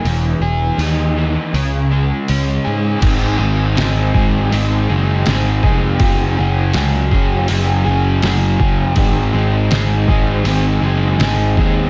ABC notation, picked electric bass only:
X:1
M:4/4
L:1/8
Q:1/4=81
K:C#dor
V:1 name="Picked electric bass" clef=bass
E,,, E,,, D,,2 C,,2 C,, G,, | [K:Abmix] A,,, A,,, A,,, A,,, A,,, G,,, A,,, F,,, | G,,, G,,, D,, G,,, G,,, G,,, G,,, G,,, | A,,, A,,, A,,, A,,, A,,, G,,, A,,, E,, |]